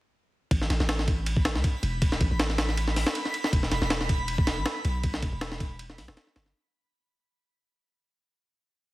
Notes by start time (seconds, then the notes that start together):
0.51 A1 B5, kick, ride
0.61 snare
0.70 A1, snare, ride
0.80 A1, snare
0.89 snare, ride
0.99 snare
1.08 kick, ride
1.26 ride
1.37 kick
1.45 snare, ride
1.55 C#2, snare
1.64 kick, ride
1.83 E1, ride
2.02 kick, ride
2.12 snare
2.21 A1, kick, ride
2.31 A1
2.40 snare, ride
2.50 snare
2.58 snare, ride
2.69 snare
2.77 ride
2.88 snare
2.96 snare, open hi-hat
3.06 snare
3.15 ride
3.25 snare
3.34 ride
3.44 snare
3.53 E1, kick, ride
3.63 snare
3.71 E1, snare, ride
3.82 E1, snare
3.90 snare, ride
4.01 snare
4.09 kick, ride
4.28 ride
4.38 kick
4.47 snare, ride
4.57 A1
4.66 snare, ride
4.85 B1, ride
5.03 kick, ride
5.14 snare
5.22 E1, kick, ride
5.33 E1
5.41 snare, ride
5.52 snare
5.60 kick, ride
5.79 ride
5.90 snare
5.98 B1, snare, open hi-hat
6.08 E1, snare
6.17 snare, ride
6.27 snare
6.36 G1, snare, ride
6.46 snare